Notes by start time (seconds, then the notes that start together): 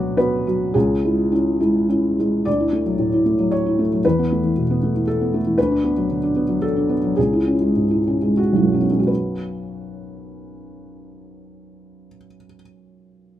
Already playing: D2 F#3 B3 F#4 D5
0.17 B3 F#4 B4
0.47 F#3 F#4
0.74 C#2 G#4
1.04 G#3 E4
1.32 C#4 E4
1.60 G#3 E4
1.89 C#4 E4
2.19 G#3 E4
2.45 D2 D5
2.60 E4
2.73 A3
2.86 F#3
2.99 A2
3.13 E4
3.26 A3
3.39 F#3
3.51 C#5
3.66 E4
3.79 A3
3.93 F#3
4.05 E2 B4
4.19 B3
4.32 A3
4.43 E3
4.57 B2
4.70 B3
4.83 A3
4.96 E3
5.07 A4
5.21 B3
5.34 A3
5.47 E3
5.58 D2 B4
5.71 D4
5.84 B3
5.97 F#3
6.11 D3
6.23 D4
6.36 B3
6.49 F#3
6.62 A4
6.76 D4
6.89 B3
7.04 F#3
7.17 C#2 G#4
7.33 E4
7.47 C#4
7.61 G#3
7.76 G#2
7.91 E4
8.07 C#4
8.22 G#3
8.37 F#4
8.53 B1 E4
8.62 F#2
8.71 F#3 C#4
8.81 B3
8.90 G#3 C#4
8.99 F#4
9.07 B4